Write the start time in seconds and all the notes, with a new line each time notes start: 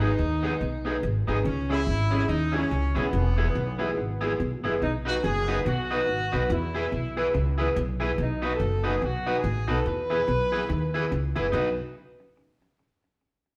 Already playing: G#1 D#4
0.00 G#3 B3 D#4 G#4
0.19 D#2 D#3
0.43 G#3 B3 D#4 G#4
0.61 B1 B2
0.85 G#3 B3 D#4 G#4
1.03 G#1 G#2 D#4 G#4
1.27 G#1 G#2 G#3 B3 D#4 G#4
1.44 C#2 C#3 C#4
1.69 G#3 C#4 E4 G#4
1.87 G#1 G#2
2.11 G#3 C#4 E4 G#4
2.28 D#2 D#3 D#4, muted clean electric guitar stroke
2.52 G#3 C#4 E4 G#4
2.71 C#2 C#3 E4 G#4
2.95 B1 B2 G#3 B3 C#4 E4 G#4
3.13 E1 E2
3.37 G#3 B3 E4 G#4
3.55 B1 B2
3.79 G#3 B3 E4 G#4
3.98 G#1 G#2
4.21 G#3 B3 E4 G#4
4.40 B1 B2 E4 G#4
4.64 F#1 F#2 G#3 B3 E4 G#4
4.82 B1 B2 D#4
5.05 B3 D#4 F#4 B4
5.24 F#1 F#2 G#4
5.48 B3 D#4 F#4 B4
5.65 B1 B2 F#4, muted clean electric guitar stroke
5.90 B3 D#4 F#4 B4
6.08 G#1 G#2
6.32 B1 B2 B3 D#4 F#4 B4
6.50 E2 E3 E4
6.74 B3 E4 G#4 B4
6.92 B1 B2
7.16 B3 E4 G#4 B4
7.34 C#2 C#3, muted clean electric guitar stroke
7.58 B3 E4 G#4 B4
7.76 B1 B2, muted clean electric guitar stroke
8.00 B3 E4 G#4 B4
8.18 B1 B2 D#4
8.42 B3 D#4 F#4 B4
8.54 A4
8.60 F#1 F#2
8.84 B3 D#4 F#4 G#4 B4
9.01 B1 B2 F#4, muted clean electric guitar stroke
9.26 B3 D#4 F#4 B4
9.37 G#4
9.44 A1 A2
9.68 B1 B2 B3 D#4 F#4 A4 B4
9.86 E2 E3 B4
10.10 B3 E4 G#4 B4
10.28 B1 B2
10.51 B3 E4 G#4 B4
10.69 D#2 D#3, muted clean electric guitar stroke
10.94 B3 E4 G#4 B4
11.11 C#2 C#3, muted clean electric guitar stroke
11.36 F#1 F#2 B3 E4 G#4 B4
11.52 B1 B3 D#4 F#4 B4